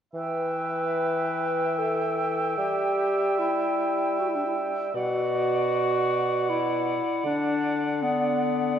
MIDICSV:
0, 0, Header, 1, 5, 480
1, 0, Start_track
1, 0, Key_signature, 1, "minor"
1, 0, Tempo, 810811
1, 89, Time_signature, 3, 2, 24, 8
1, 2007, Tempo, 771208
1, 5369, End_track
2, 0, Start_track
2, 0, Title_t, "Flute"
2, 0, Program_c, 0, 73
2, 82, Note_on_c, 0, 79, 34
2, 2950, Note_off_c, 0, 79, 0
2, 2980, Note_on_c, 0, 78, 41
2, 5369, Note_off_c, 0, 78, 0
2, 5369, End_track
3, 0, Start_track
3, 0, Title_t, "Cor anglais"
3, 0, Program_c, 1, 69
3, 79, Note_on_c, 1, 76, 36
3, 2977, Note_on_c, 1, 74, 41
3, 2986, Note_off_c, 1, 76, 0
3, 5369, Note_off_c, 1, 74, 0
3, 5369, End_track
4, 0, Start_track
4, 0, Title_t, "Clarinet"
4, 0, Program_c, 2, 71
4, 87, Note_on_c, 2, 71, 59
4, 1057, Note_on_c, 2, 69, 54
4, 1066, Note_off_c, 2, 71, 0
4, 1531, Note_on_c, 2, 67, 58
4, 1539, Note_off_c, 2, 69, 0
4, 2006, Note_on_c, 2, 64, 47
4, 2015, Note_off_c, 2, 67, 0
4, 2507, Note_on_c, 2, 66, 39
4, 2517, Note_off_c, 2, 64, 0
4, 2565, Note_on_c, 2, 64, 40
4, 2574, Note_off_c, 2, 66, 0
4, 2604, Note_on_c, 2, 62, 39
4, 2613, Note_off_c, 2, 64, 0
4, 2668, Note_on_c, 2, 64, 40
4, 2677, Note_off_c, 2, 62, 0
4, 2729, Note_off_c, 2, 64, 0
4, 2974, Note_on_c, 2, 66, 71
4, 3940, Note_on_c, 2, 64, 60
4, 3949, Note_off_c, 2, 66, 0
4, 4410, Note_off_c, 2, 64, 0
4, 4414, Note_on_c, 2, 62, 67
4, 4889, Note_on_c, 2, 59, 59
4, 4898, Note_off_c, 2, 62, 0
4, 5369, Note_off_c, 2, 59, 0
4, 5369, End_track
5, 0, Start_track
5, 0, Title_t, "Bassoon"
5, 0, Program_c, 3, 70
5, 82, Note_on_c, 3, 52, 41
5, 1503, Note_off_c, 3, 52, 0
5, 1526, Note_on_c, 3, 55, 44
5, 2951, Note_off_c, 3, 55, 0
5, 2973, Note_on_c, 3, 47, 48
5, 4225, Note_off_c, 3, 47, 0
5, 4404, Note_on_c, 3, 50, 55
5, 5369, Note_off_c, 3, 50, 0
5, 5369, End_track
0, 0, End_of_file